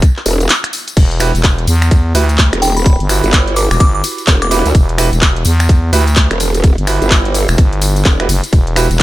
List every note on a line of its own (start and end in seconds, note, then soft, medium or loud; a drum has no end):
0.02 kick loud
0.02 closed hi-hat medium
0.02 tambourine soft
0.16 clap soft
0.26 0.48 E1 loud
0.26 open hi-hat loud
0.26 tambourine medium
0.40 closed hi-hat soft
0.40 tambourine medium
0.49 clap loud
0.49 closed hi-hat medium
0.49 tambourine soft
0.64 finger snap medium
0.64 closed hi-hat medium
0.73 open hi-hat medium
0.73 tambourine medium
0.88 closed hi-hat medium
0.88 tambourine soft
0.97 1.33 E1 loud
0.97 kick loud
0.97 closed hi-hat medium
0.97 crash medium
0.97 ride medium
0.97 tambourine soft
1.11 closed hi-hat soft
1.20 1.29 E4 loud
1.20 1.29 F#4 medium
1.20 1.29 G4 medium
1.20 1.29 B4 loud
1.20 finger snap medium
1.20 open hi-hat loud
1.20 ride medium
1.20 tambourine medium
1.35 1.66 E1 medium
1.35 closed hi-hat soft
1.35 tambourine medium
1.43 kick loud
1.43 clap loud
1.43 closed hi-hat medium
1.43 ride medium
1.43 tambourine soft
1.58 closed hi-hat soft
1.67 2.13 E2 loud
1.67 open hi-hat medium
1.67 ride medium
1.67 tambourine loud
1.82 finger snap medium
1.82 tambourine soft
1.91 kick loud
1.91 closed hi-hat medium
1.91 ride medium
1.91 tambourine soft
2.15 2.51 D2 loud
2.15 2.23 E4 loud
2.15 2.23 F#4 medium
2.15 2.23 G4 medium
2.15 2.23 B4 loud
2.15 open hi-hat loud
2.15 ride medium
2.15 tambourine medium
2.29 closed hi-hat soft
2.29 tambourine medium
2.38 kick loud
2.38 clap loud
2.38 closed hi-hat medium
2.38 ride medium
2.53 2.98 E1 loud
2.53 finger snap medium
2.53 closed hi-hat medium
2.62 2.74 G5 medium
2.62 open hi-hat medium
2.62 ride medium
2.62 tambourine medium
2.77 2.82 B5 medium
2.77 closed hi-hat medium
2.77 tambourine medium
2.86 2.95 B5 medium
2.86 kick loud
2.86 closed hi-hat medium
2.86 ride medium
2.86 tambourine soft
3.00 3.22 G1 loud
3.00 closed hi-hat soft
3.09 4.49 E4 medium
3.09 4.49 F#4 medium
3.09 4.49 G4 medium
3.09 4.49 B4 medium
3.09 finger snap medium
3.09 open hi-hat loud
3.09 ride medium
3.09 tambourine loud
3.23 3.69 G1 loud
3.23 closed hi-hat soft
3.23 tambourine medium
3.33 kick loud
3.33 clap loud
3.33 closed hi-hat medium
3.33 ride medium
3.48 closed hi-hat soft
3.56 3.66 D6 medium
3.56 open hi-hat medium
3.56 ride medium
3.56 tambourine medium
3.71 3.79 E1 loud
3.71 3.77 D6 medium
3.71 finger snap medium
3.71 tambourine soft
3.80 4.02 G1 loud
3.80 3.89 D6 medium
3.80 kick loud
3.80 closed hi-hat medium
3.80 ride medium
3.80 tambourine soft
3.95 4.01 D6 medium
4.04 open hi-hat loud
4.04 ride medium
4.04 tambourine loud
4.18 closed hi-hat soft
4.18 tambourine medium
4.27 4.63 E1 medium
4.27 kick loud
4.27 clap loud
4.27 closed hi-hat medium
4.27 ride medium
4.27 tambourine soft
4.42 4.48 D6 medium
4.42 finger snap medium
4.42 closed hi-hat medium
4.51 4.65 E4 medium
4.51 4.65 F#4 medium
4.51 4.65 G4 medium
4.51 4.65 B4 loud
4.51 4.60 D6 medium
4.51 open hi-hat medium
4.51 ride medium
4.51 tambourine loud
4.65 4.73 D2 loud
4.65 closed hi-hat medium
4.65 tambourine medium
4.75 5.11 E1 loud
4.75 kick loud
4.75 closed hi-hat medium
4.75 ride medium
4.75 tambourine soft
4.89 closed hi-hat soft
4.98 5.07 E4 loud
4.98 5.07 F#4 medium
4.98 5.07 G4 medium
4.98 5.07 B4 loud
4.98 finger snap medium
4.98 open hi-hat loud
4.98 ride medium
4.98 tambourine loud
5.13 5.44 E1 medium
5.13 closed hi-hat soft
5.13 tambourine medium
5.21 kick loud
5.21 clap loud
5.21 closed hi-hat medium
5.21 ride medium
5.21 tambourine soft
5.36 closed hi-hat soft
5.45 5.91 E2 loud
5.45 open hi-hat loud
5.45 ride medium
5.45 tambourine loud
5.60 finger snap medium
5.60 tambourine medium
5.69 kick loud
5.69 closed hi-hat medium
5.69 ride medium
5.93 6.29 D2 loud
5.93 6.01 E4 loud
5.93 6.01 F#4 medium
5.93 6.01 G4 medium
5.93 6.01 B4 loud
5.93 open hi-hat loud
5.93 ride medium
5.93 tambourine loud
6.07 closed hi-hat soft
6.07 tambourine medium
6.16 kick loud
6.16 clap loud
6.16 closed hi-hat medium
6.16 ride medium
6.16 tambourine soft
6.31 6.76 E1 loud
6.31 finger snap medium
6.31 closed hi-hat medium
6.40 open hi-hat loud
6.40 ride medium
6.40 tambourine medium
6.54 closed hi-hat medium
6.54 tambourine medium
6.64 kick loud
6.64 closed hi-hat medium
6.64 ride medium
6.64 tambourine soft
6.78 6.99 G1 loud
6.78 closed hi-hat soft
6.87 8.17 E4 medium
6.87 8.17 F#4 medium
6.87 8.17 G4 medium
6.87 8.17 B4 medium
6.87 finger snap medium
6.87 open hi-hat loud
6.87 ride medium
6.87 tambourine medium
7.02 7.47 G1 loud
7.02 closed hi-hat soft
7.02 tambourine medium
7.10 kick loud
7.10 clap loud
7.10 closed hi-hat medium
7.10 ride medium
7.10 tambourine soft
7.25 closed hi-hat soft
7.34 open hi-hat medium
7.34 ride medium
7.34 tambourine loud
7.48 7.57 E1 loud
7.48 finger snap medium
7.48 tambourine medium
7.58 8.04 G1 loud
7.58 kick loud
7.58 closed hi-hat medium
7.58 ride medium
7.58 tambourine soft
7.73 closed hi-hat soft
7.81 open hi-hat loud
7.81 ride medium
7.81 tambourine loud
7.96 closed hi-hat soft
7.96 tambourine medium
8.05 8.28 E1 medium
8.05 kick loud
8.05 clap loud
8.05 closed hi-hat medium
8.05 ride medium
8.05 tambourine soft
8.20 8.25 E4 medium
8.20 8.25 F#4 medium
8.20 8.25 G4 medium
8.20 8.25 B4 medium
8.20 finger snap medium
8.20 closed hi-hat soft
8.29 8.41 F#1 loud
8.29 open hi-hat loud
8.29 ride medium
8.29 tambourine loud
8.44 closed hi-hat medium
8.44 tambourine medium
8.53 8.88 E1 loud
8.53 kick loud
8.53 closed hi-hat medium
8.53 ride medium
8.53 tambourine soft
8.67 closed hi-hat soft
8.76 8.85 E4 medium
8.76 8.85 F#4 medium
8.76 8.85 G4 medium
8.76 8.85 B4 loud
8.76 finger snap medium
8.76 open hi-hat loud
8.76 ride medium
8.76 tambourine loud
8.91 9.03 E1 loud
8.91 closed hi-hat soft
8.91 tambourine medium
8.99 clap loud